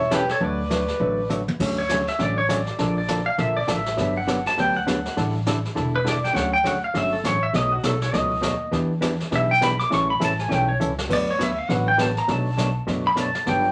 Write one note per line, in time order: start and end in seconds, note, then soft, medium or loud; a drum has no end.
0.00 0.29 E1 medium
0.00 0.10 C#5 medium
0.00 0.13 E5 medium
0.11 0.22 E3 medium
0.11 0.22 G3 medium
0.11 0.22 C#4 medium
0.11 0.22 E4 medium
0.11 0.29 G4 medium
0.11 0.23 A4 medium
0.11 0.30 B4 medium
0.11 snare medium
0.11 hi-hat pedal medium
0.29 0.41 A4 medium
0.29 0.43 C#5 medium
0.29 snare soft
0.40 0.89 D2 loud
0.40 0.61 D3 medium
0.40 0.61 F#3 medium
0.40 0.61 A3 medium
0.40 0.61 D4 medium
0.40 0.61 F#4 medium
0.40 0.61 B4 medium
0.40 1.27 B4 medium
0.40 1.28 B4 medium
0.40 brush sweep medium
0.40 kick soft
0.45 1.28 D5 medium
0.70 0.82 D3 medium
0.70 0.82 F#3 medium
0.70 0.82 A3 medium
0.70 0.82 D4 medium
0.70 0.82 F#4 medium
0.70 0.82 B4 medium
0.70 snare medium
0.70 hi-hat pedal medium
0.88 snare soft
1.00 1.48 A1 medium
1.00 1.20 D3 medium
1.00 1.20 F#3 medium
1.00 1.20 A3 medium
1.00 1.20 D4 medium
1.00 1.20 F#4 medium
1.00 1.21 B4 medium
1.00 brush sweep soft
1.00 kick soft
1.29 1.41 D3 medium
1.29 1.41 F#3 medium
1.29 1.41 A3 medium
1.29 1.41 D4 medium
1.29 1.41 F#4 medium
1.29 1.41 B4 medium
1.29 hi-hat pedal medium
1.29 high tom soft
1.48 high tom medium
1.60 2.07 D2 medium
1.60 1.80 D3 medium
1.60 1.80 F#3 medium
1.60 1.80 A3 medium
1.60 1.80 C#4 medium
1.60 1.80 F#4 medium
1.60 brush sweep soft
1.60 kick medium
1.60 snare soft
1.60 crash medium
1.78 2.06 C#5 medium
1.89 2.01 D3 medium
1.89 2.01 F#3 medium
1.89 2.01 A3 medium
1.89 2.01 C#4 medium
1.89 2.02 F#4 medium
1.89 kick soft
1.89 snare medium
1.89 hi-hat pedal medium
2.08 2.20 E5 medium
2.08 snare soft
2.19 2.67 A1 medium
2.19 2.39 D3 medium
2.19 2.39 F#3 medium
2.19 2.39 A3 medium
2.19 2.39 C#4 medium
2.19 2.39 F#4 medium
2.19 brush sweep soft
2.19 kick soft
2.19 snare soft
2.23 2.37 D5 medium
2.38 2.49 C#5 medium
2.48 2.60 D3 medium
2.48 2.60 F#3 medium
2.48 2.60 A3 medium
2.48 2.60 C#4 medium
2.48 2.60 F#4 medium
2.48 2.94 D5 medium
2.48 kick soft
2.48 snare medium
2.48 hi-hat pedal medium
2.67 snare soft
2.79 3.27 A#1 medium
2.79 2.99 D3 medium
2.79 2.99 F3 medium
2.79 2.99 A#3 medium
2.79 2.99 D4 medium
2.79 2.99 A4 medium
2.79 brush sweep medium
2.79 kick soft
2.79 snare soft
2.98 3.25 D5 medium
3.08 3.20 D3 medium
3.08 3.20 F3 medium
3.08 3.20 A#3 medium
3.08 3.20 D4 medium
3.08 3.20 A4 medium
3.08 kick soft
3.08 snare medium
3.08 hi-hat pedal medium
3.26 3.38 F5 loud
3.38 3.64 A#1 medium
3.38 3.58 D3 medium
3.38 3.58 F3 medium
3.38 3.58 A#3 medium
3.38 3.58 D4 medium
3.38 3.59 A4 medium
3.38 3.57 E5 medium
3.38 brush sweep medium
3.38 kick soft
3.38 snare soft
3.57 3.68 D5 loud
3.67 3.93 A1 medium
3.67 3.79 D3 medium
3.67 3.79 F3 medium
3.67 3.79 A#3 medium
3.67 3.79 D4 medium
3.67 3.79 A4 medium
3.67 4.17 E5 medium
3.67 kick soft
3.67 snare medium
3.67 hi-hat pedal medium
3.86 snare soft
3.97 4.46 G1 loud
3.97 4.17 D3 medium
3.97 4.17 F#3 medium
3.97 4.17 B3 medium
3.97 4.18 D4 medium
3.97 4.18 G4 medium
3.97 brush sweep medium
3.97 kick soft
3.97 snare soft
4.17 4.44 F#5 medium
4.27 4.38 D3 medium
4.27 4.38 F#3 medium
4.27 4.38 B3 medium
4.27 4.39 D4 medium
4.27 4.39 G4 medium
4.27 kick soft
4.27 snare medium
4.27 hi-hat pedal soft
4.46 4.58 A5 loud
4.46 snare soft
4.57 5.05 D2 medium
4.57 4.77 D3 medium
4.57 4.77 F#3 medium
4.57 4.78 B3 medium
4.57 4.77 D4 medium
4.57 4.78 G4 medium
4.57 4.76 G5 medium
4.57 brush sweep medium
4.57 kick soft
4.57 snare soft
4.76 4.87 F#5 medium
4.86 4.98 D3 medium
4.86 4.98 F#3 medium
4.86 4.98 B3 medium
4.86 4.98 D4 medium
4.86 4.98 G4 medium
4.86 5.33 F#5 medium
4.86 kick soft
4.86 snare medium
4.86 hi-hat pedal medium
5.05 snare soft
5.16 5.65 A1 loud
5.16 5.36 D3 medium
5.16 5.37 G3 medium
5.16 5.36 D4 medium
5.16 5.37 E4 medium
5.16 5.37 A4 medium
5.16 brush sweep medium
5.16 kick soft
5.16 snare soft
5.46 5.57 D3 medium
5.46 5.58 G3 medium
5.46 5.58 D4 medium
5.46 5.58 E4 medium
5.46 5.58 A4 medium
5.46 kick soft
5.46 snare medium
5.46 hi-hat pedal medium
5.65 snare soft
5.75 6.24 E1 medium
5.75 5.95 D3 medium
5.75 5.96 G3 medium
5.75 5.96 D4 medium
5.75 5.96 E4 medium
5.75 5.96 A4 medium
5.75 brush sweep soft
5.75 kick soft
5.75 snare soft
5.96 6.06 B4 medium
6.04 6.16 D3 medium
6.04 6.16 G3 medium
6.04 6.16 D4 medium
6.04 6.16 E4 medium
6.04 6.16 A4 medium
6.04 6.24 D5 medium
6.04 kick soft
6.04 snare medium
6.04 hi-hat pedal medium
6.24 6.36 G5 loud
6.24 snare soft
6.33 6.83 D2 medium
6.33 6.54 D3 medium
6.33 6.54 F#3 medium
6.33 6.54 A3 medium
6.33 6.54 C#4 medium
6.33 6.54 F#4 medium
6.33 6.53 F#5 loud
6.33 brush sweep medium
6.33 kick soft
6.33 snare medium
6.53 6.65 G5 loud
6.64 6.76 D3 medium
6.64 6.75 F#3 medium
6.64 6.76 A3 medium
6.64 6.76 C#4 medium
6.64 6.76 F#4 medium
6.64 6.83 F#5 medium
6.64 kick soft
6.64 snare medium
6.64 hi-hat pedal medium
6.84 6.95 F5 medium
6.94 7.20 G1 medium
6.94 7.14 D3 medium
6.94 7.14 F#3 medium
6.94 7.14 A3 medium
6.94 7.14 C#4 medium
6.94 7.14 F#4 medium
6.94 7.14 E5 medium
6.94 brush sweep medium
6.94 kick soft
6.94 snare soft
7.13 7.24 A4 medium
7.24 7.49 A1 medium
7.24 7.36 D3 medium
7.24 7.36 F#3 medium
7.24 7.36 A3 medium
7.24 7.36 C#4 medium
7.24 7.36 F#4 medium
7.24 7.43 C#5 medium
7.24 kick soft
7.24 snare medium
7.24 hi-hat pedal medium
7.43 7.54 E5 loud
7.53 7.78 B1 medium
7.53 7.73 B2 medium
7.53 7.74 F#3 medium
7.53 7.74 A3 medium
7.53 7.74 D#4 medium
7.53 7.74 F#4 medium
7.53 7.72 D#5 medium
7.53 brush sweep soft
7.53 kick soft
7.53 snare medium
7.72 7.84 F#4 medium
7.83 8.09 B1 medium
7.83 7.95 B2 medium
7.83 7.95 F#3 medium
7.83 7.95 A3 medium
7.83 7.95 D#4 medium
7.83 7.95 F#4 medium
7.83 8.02 A4 medium
7.83 kick soft
7.83 snare medium
7.83 hi-hat pedal medium
8.01 8.15 C#5 medium
8.01 snare soft
8.13 8.39 C#2 medium
8.13 8.33 B2 medium
8.13 8.33 F#3 medium
8.13 8.33 A3 medium
8.13 8.33 D#4 medium
8.13 8.34 F#4 medium
8.13 8.74 D#5 medium
8.13 brush sweep medium
8.13 kick soft
8.13 snare soft
8.41 8.68 D#2 medium
8.41 8.53 B2 medium
8.41 8.53 F#3 medium
8.41 8.54 A3 medium
8.41 8.53 D#4 medium
8.41 8.54 F#4 medium
8.41 kick soft
8.41 snare medium
8.41 hi-hat pedal medium
8.72 9.20 E2 medium
8.72 8.92 E3 medium
8.72 8.92 B3 medium
8.72 8.92 D4 medium
8.72 8.93 G4 medium
8.72 brush sweep soft
8.72 kick soft
8.72 snare soft
9.01 9.13 E3 medium
9.01 9.13 B3 medium
9.01 9.13 D4 medium
9.01 9.13 G4 medium
9.01 kick soft
9.01 snare medium
9.01 hi-hat pedal medium
9.20 snare soft
9.31 9.79 B1 loud
9.31 9.51 E3 medium
9.31 9.52 B3 medium
9.31 9.52 D4 medium
9.31 9.52 G4 medium
9.31 brush sweep medium
9.31 kick soft
9.31 snare soft
9.36 9.51 E5 medium
9.51 9.62 G5 loud
9.61 9.72 E3 medium
9.61 9.73 B3 medium
9.61 9.73 D4 medium
9.61 9.73 G4 medium
9.61 9.79 B5 loud
9.61 kick soft
9.61 snare medium
9.61 hi-hat pedal medium
9.80 9.91 D6 loud
9.80 snare soft
9.90 10.15 A1 loud
9.90 10.11 E3 medium
9.90 10.11 G3 medium
9.90 10.11 C#4 medium
9.90 10.11 E4 medium
9.90 10.11 A4 medium
9.90 10.10 C#6 loud
9.90 brush sweep medium
9.90 kick soft
9.90 snare soft
10.10 10.21 B5 loud
10.20 10.46 A1 medium
10.20 10.31 E3 medium
10.20 10.32 G3 medium
10.20 10.32 C#4 medium
10.20 10.32 E4 medium
10.20 10.32 A4 medium
10.20 kick soft
10.20 snare medium
10.20 hi-hat pedal medium
10.25 10.40 A5 medium
10.39 10.54 G#5 loud
10.39 snare soft
10.49 10.76 B1 medium
10.49 10.69 E3 medium
10.49 10.69 G3 medium
10.49 10.70 C#4 medium
10.49 10.70 E4 medium
10.49 10.70 A4 medium
10.49 brush sweep soft
10.49 kick soft
10.49 snare medium
10.54 10.70 G5 medium
10.69 10.76 C#5 loud
10.80 11.06 C#2 medium
10.80 10.91 E3 medium
10.80 10.91 G3 medium
10.80 10.91 C#4 medium
10.80 10.91 E4 medium
10.80 10.91 A4 medium
10.80 hi-hat pedal medium
10.98 snare medium
11.09 11.58 D2 loud
11.09 11.29 D3 medium
11.09 11.29 F#3 medium
11.09 11.30 B3 medium
11.09 11.30 F#4 medium
11.09 11.30 B4 medium
11.09 11.29 D5 medium
11.09 brush sweep medium
11.09 kick medium
11.09 snare medium
11.09 crash medium
11.31 11.41 C#5 medium
11.38 11.50 D3 medium
11.38 11.50 F#3 medium
11.38 11.50 B3 medium
11.38 11.50 F#4 medium
11.38 11.51 B4 medium
11.38 kick soft
11.38 snare medium
11.38 hi-hat pedal medium
11.43 11.58 E5 medium
11.58 11.70 F5 medium
11.69 12.17 A1 loud
11.69 11.89 D3 medium
11.69 11.89 F#3 medium
11.69 11.89 B3 medium
11.69 11.89 F#4 medium
11.69 11.90 B4 medium
11.69 11.87 F#5 medium
11.69 brush sweep medium
11.69 kick soft
11.69 snare soft
11.88 11.99 G5 loud
11.97 12.09 D3 medium
11.97 12.09 F#3 medium
11.97 12.10 B3 medium
11.97 12.10 F#4 medium
11.97 12.10 B4 medium
11.97 12.18 A5 loud
11.97 kick soft
11.97 snare medium
11.97 hi-hat pedal medium
12.17 12.29 A#5 loud
12.17 snare soft
12.28 12.76 B1 medium
12.28 12.48 B2 medium
12.28 12.48 F#3 medium
12.28 12.48 A3 medium
12.28 12.48 D4 medium
12.28 12.48 F#4 medium
12.28 12.74 A5 loud
12.28 brush sweep medium
12.28 kick soft
12.28 snare medium
12.57 12.69 B2 medium
12.57 12.69 F#3 medium
12.57 12.69 A3 medium
12.57 12.69 D4 medium
12.57 12.69 F#4 medium
12.57 kick soft
12.57 snare medium
12.57 hi-hat pedal medium
12.87 13.35 F#2 medium
12.87 13.07 B2 medium
12.87 13.07 F#3 medium
12.87 13.07 A3 medium
12.87 13.07 D4 medium
12.87 13.07 F#4 medium
12.87 brush sweep medium
12.87 kick soft
12.87 snare soft
13.07 13.18 B5 loud
13.16 13.27 B2 medium
13.16 13.28 F#3 medium
13.16 13.28 A3 medium
13.16 13.28 D4 medium
13.16 13.28 F#4 medium
13.16 kick soft
13.16 snare medium
13.16 hi-hat pedal medium
13.20 13.47 A5 medium
13.35 snare soft
13.46 13.72 G1 loud
13.46 13.66 D3 medium
13.46 13.66 F#3 medium
13.46 13.67 B3 medium
13.46 13.67 D4 medium
13.46 13.67 G4 medium
13.46 13.72 G5 loud
13.46 brush sweep medium
13.46 kick soft
13.46 snare soft